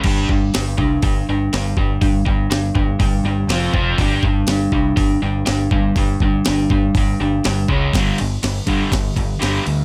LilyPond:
<<
  \new Staff \with { instrumentName = "Overdriven electric guitar" } { \clef bass \time 4/4 \key f \mixolydian \tempo 4 = 122 <g d' g'>8 <g d'>8 <g d'>8 <g d'>8 <g d'>8 <g d'>8 <g d'>8 <g d'>8 | <g d'>8 <g d'>8 <g d'>8 <g d'>8 <g d'>8 <g d'>8 <f c' f'>8 <f c' f'>8 | <g d' g'>8 <g d'>8 <g d'>8 <g d'>8 <g d'>8 <g d'>8 <g d'>8 <g d'>8 | <g d'>8 <g d'>8 <g d'>8 <g d'>8 <g d'>8 <g d'>8 <g d'>8 <cis gis cis'>8 |
<g, d g>8 <g, d>8 <g, d>8 <g, d g>8 <g, d>8 <g, d>8 <g, d g>8 <g, d>8 | }
  \new Staff \with { instrumentName = "Picked electric bass" } { \clef bass \time 4/4 \key f \mixolydian g,,8 g,,8 g,,8 c,8 g,,8 g,,8 g,,8 g,,8 | g,,8 g,,8 g,,8 g,,8 g,,8 g,,8 f,,8 f,,8 | g,,8 g,,8 g,,8 c,8 g,,8 g,,8 g,,8 g,,8 | g,,8 g,,8 g,,8 g,,8 g,,8 g,,8 g,,8 cis,8 |
g,,8 g,,8 g,,8 g,8 g,,8 g,,8 g,,8 d,8 | }
  \new DrumStaff \with { instrumentName = "Drums" } \drummode { \time 4/4 <cymc bd>8 bd8 <hho sn>8 bd8 <hho bd>4 <hho sn>8 bd8 | <hho bd>8 bd8 <hho sn>8 bd8 <hho bd>4 <hho sn>8 bd8 | <hho bd>8 bd8 <hho sn>8 bd8 <hho bd>4 <hho sn>8 bd8 | <hho bd>8 bd8 <hho sn>8 bd8 <hho bd>4 <hho sn>8 bd8 |
<bd cymr sn>8 cymr8 <cymr sn>8 <bd cymr>8 <bd cymr sn>8 <bd cymr>8 <cymr sn>8 cymr8 | }
>>